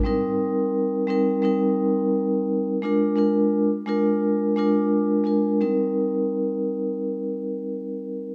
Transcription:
X:1
M:4/4
L:1/8
Q:"Swing 16ths" 1/4=86
K:Cm
V:1 name="Vibraphone"
[G,CEB]3 [G,CEB] [G,CEB]4 | [A,DFB] [A,DFB] z [A,DFB]2 [A,DFB]2 [A,DFB] | [G,CEB]8 |]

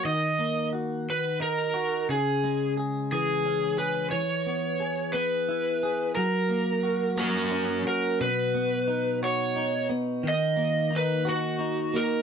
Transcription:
X:1
M:6/8
L:1/8
Q:3/8=59
K:B
V:1 name="Electric slide guitar"
d2 z B A2 | G2 z G2 B | c3 B3 | A3 [FA]2 A |
B3 c2 z | d2 B F2 A |]
V:2 name="Clean electric guitar"
D, A, F2 D F | C, G, G E, C G | E, B, G B, E G | F, A, F A, C F |
B,, B, D F D B, | D, A, D F D A, |]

